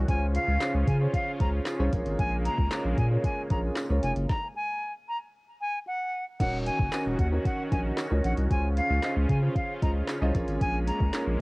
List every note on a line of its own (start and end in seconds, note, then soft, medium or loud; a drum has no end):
0.08 0.38 C#2 loud
0.08 1.91 C#3 medium
0.08 0.52 C#4 medium
0.08 1.91 C#4 medium
0.08 0.52 F4 medium
0.08 1.91 F4 medium
0.08 0.52 G#4 medium
0.08 0.52 C5 medium
0.08 0.53 C#5 medium
0.08 0.27 G#5 loud
0.08 kick loud
0.08 closed hi-hat loud
0.35 0.72 F5 medium
0.35 closed hi-hat medium
0.48 0.58 C#2 loud
0.60 0.94 C#4 medium
0.60 0.94 F4 medium
0.60 0.94 G#4 medium
0.60 0.94 C5 medium
0.60 0.94 C#5 medium
0.60 snare loud
0.60 clap loud
0.60 closed hi-hat loud
0.60 tambourine medium
0.74 0.84 C#2 loud
0.87 1.07 C#3 loud
0.87 0.97 G#5 medium
0.87 kick medium
0.87 closed hi-hat medium
1.00 1.33 C#4 medium
1.00 1.33 F4 medium
1.00 1.33 G#4 medium
1.00 1.34 C5 medium
1.00 1.34 C#5 medium
1.14 1.32 F5 medium
1.14 kick loud
1.14 closed hi-hat loud
1.40 1.60 C#2 medium
1.40 1.73 C#4 medium
1.40 1.73 F4 medium
1.40 1.73 G#4 medium
1.40 1.73 C5 medium
1.40 1.73 C#5 medium
1.40 1.49 A#5 medium
1.40 kick loud
1.40 closed hi-hat medium
1.65 snare loud
1.65 clap loud
1.65 closed hi-hat medium
1.65 tambourine loud
1.79 1.89 C2 loud
1.79 1.91 C#4 loud
1.79 1.91 F4 medium
1.79 1.91 G#4 medium
1.79 1.93 C5 medium
1.79 1.91 C#5 loud
1.92 2.03 A#1 loud
1.92 4.27 C#3 medium
1.92 4.27 G#3 medium
1.92 4.27 A#3 medium
1.92 2.58 C#4 medium
1.92 2.58 F4 medium
1.92 2.59 G#4 medium
1.92 2.59 A#4 medium
1.92 2.59 C#5 loud
1.92 kick medium
1.92 closed hi-hat medium
2.06 2.16 G#1 loud
2.06 closed hi-hat soft
2.19 2.49 A#1 loud
2.19 2.37 G#5 loud
2.19 kick loud
2.19 closed hi-hat medium
2.45 2.82 A#5 medium
2.45 closed hi-hat medium
2.58 2.68 C#2 loud
2.58 kick loud
2.71 3.04 C#4 medium
2.71 3.04 F4 medium
2.71 3.05 G#4 medium
2.71 3.05 A#4 medium
2.71 3.05 C#5 medium
2.71 snare medium
2.71 clap loud
2.71 closed hi-hat loud
2.71 tambourine medium
2.85 2.95 A#1 loud
2.98 3.18 A#2 loud
2.98 3.07 G#5 medium
2.98 kick medium
2.98 closed hi-hat medium
3.11 3.44 C#4 medium
3.11 3.44 F4 medium
3.11 3.44 G#4 medium
3.11 3.44 A#4 medium
3.11 3.44 C#5 medium
3.24 3.42 G#5 medium
3.24 kick loud
3.24 closed hi-hat loud
3.50 3.71 A#1 medium
3.50 3.83 C#4 medium
3.50 3.84 F4 medium
3.50 3.84 G#4 medium
3.50 3.84 A#4 medium
3.50 3.84 C#5 medium
3.50 3.60 A#5 medium
3.50 kick loud
3.50 closed hi-hat medium
3.76 snare loud
3.76 clap loud
3.76 closed hi-hat loud
3.76 tambourine medium
3.90 4.00 C#2 medium
3.90 4.23 C#4 medium
3.90 4.23 F4 medium
3.90 4.23 G#4 medium
3.90 4.23 A#4 medium
3.90 4.23 C#5 medium
4.03 4.13 F1 loud
4.03 4.12 G#5 medium
4.03 closed hi-hat medium
4.16 4.26 F#1 loud
4.16 closed hi-hat medium
4.30 4.48 A#5 loud
4.30 kick loud
4.30 snare medium
4.56 4.93 G#5 medium
5.09 5.18 A#5 medium
5.61 5.79 G#5 medium
5.87 6.24 F#5 medium
6.40 6.70 D#1 loud
6.40 8.49 D#3 medium
6.40 6.84 C#4 medium
6.40 8.49 C#4 medium
6.40 6.84 D#4 medium
6.40 6.84 F#4 medium
6.40 8.49 F#4 medium
6.40 6.84 A#4 medium
6.40 6.84 C#5 medium
6.40 6.58 F#5 loud
6.40 kick loud
6.40 closed hi-hat medium
6.40 crash loud
6.66 7.03 G#5 medium
6.66 closed hi-hat medium
6.79 6.89 F#1 medium
6.79 kick loud
6.92 7.26 C#4 medium
6.92 7.26 D#4 medium
6.92 7.26 F#4 medium
6.92 7.26 A#4 medium
6.92 7.26 C#5 medium
6.92 snare loud
6.92 clap loud
6.92 closed hi-hat loud
6.92 tambourine medium
7.06 7.16 D#1 loud
7.19 7.39 D#2 loud
7.19 7.28 F#5 medium
7.19 kick medium
7.19 closed hi-hat medium
7.32 7.65 C#4 medium
7.32 7.65 D#4 medium
7.32 7.65 F#4 medium
7.32 7.65 A#4 medium
7.32 7.65 C#5 medium
7.45 7.63 F#5 medium
7.45 kick loud
7.45 closed hi-hat medium
7.71 7.92 A#1 medium
7.71 8.04 C#4 medium
7.71 8.05 D#4 medium
7.71 8.05 F#4 medium
7.71 8.05 A#4 medium
7.71 8.05 C#5 medium
7.71 7.81 G#5 medium
7.71 kick loud
7.71 closed hi-hat medium
7.97 snare loud
7.97 clap loud
7.97 closed hi-hat loud
7.97 tambourine loud
8.11 8.21 C#2 loud
8.11 8.44 C#4 medium
8.11 8.44 D#4 medium
8.11 8.44 F#4 medium
8.11 8.44 A#4 medium
8.11 8.44 C#5 medium
8.24 8.34 A#1 loud
8.24 8.33 F#5 medium
8.24 closed hi-hat medium
8.37 8.47 C2 medium
8.37 closed hi-hat soft
8.50 8.80 C#2 loud
8.50 10.33 C#3 medium
8.50 8.94 C#4 medium
8.50 10.33 C#4 medium
8.50 8.94 F4 medium
8.50 10.33 F4 medium
8.50 8.95 G#4 medium
8.50 8.95 C5 medium
8.50 8.95 C#5 medium
8.50 8.69 G#5 loud
8.50 kick loud
8.50 closed hi-hat medium
8.77 9.14 F5 loud
8.77 closed hi-hat medium
8.90 9.00 C#2 loud
9.03 9.36 C#4 medium
9.03 9.36 F4 medium
9.03 9.36 G#4 medium
9.03 9.36 C5 medium
9.03 9.36 D#5 medium
9.03 snare loud
9.03 clap loud
9.03 closed hi-hat loud
9.03 tambourine medium
9.16 9.26 C#2 loud
9.29 9.49 C#3 loud
9.29 9.39 G#5 medium
9.29 kick medium
9.29 closed hi-hat medium
9.42 9.76 C#4 medium
9.42 9.76 F4 medium
9.42 9.76 G#4 medium
9.42 9.76 C5 medium
9.42 9.76 C#5 medium
9.56 9.74 F5 loud
9.56 kick loud
9.56 closed hi-hat medium
9.82 10.02 C#2 loud
9.82 10.15 C#4 medium
9.82 10.15 F4 medium
9.82 10.15 G#4 medium
9.82 10.15 C5 medium
9.82 10.15 D#5 medium
9.82 9.91 A#5 medium
9.82 kick loud
9.82 closed hi-hat medium
10.07 snare loud
10.07 clap loud
10.07 closed hi-hat loud
10.07 tambourine medium
10.21 10.32 C2 loud
10.21 10.33 C#4 loud
10.21 10.33 F4 medium
10.21 10.33 G#4 medium
10.21 10.35 C5 medium
10.21 10.35 D#5 loud
10.35 10.45 A#1 loud
10.35 11.41 G#3 medium
10.35 11.41 A#3 medium
10.35 11.01 C#4 loud
10.35 11.41 C#4 medium
10.35 11.01 F4 medium
10.35 11.01 G#4 medium
10.35 11.01 A#4 medium
10.35 11.01 C#5 loud
10.35 kick medium
10.35 closed hi-hat medium
10.48 10.58 G#1 loud
10.48 closed hi-hat soft
10.61 10.91 A#1 loud
10.61 10.79 G#5 loud
10.61 kick loud
10.61 closed hi-hat loud
10.87 11.25 A#5 medium
10.87 closed hi-hat medium
11.00 11.10 C#2 medium
11.00 kick loud
11.13 11.41 C#4 medium
11.13 11.41 F4 medium
11.13 11.41 G#4 medium
11.13 11.41 A#4 medium
11.13 11.41 C#5 medium
11.13 snare loud
11.13 clap loud
11.13 closed hi-hat loud
11.13 tambourine medium
11.27 11.37 A#1 loud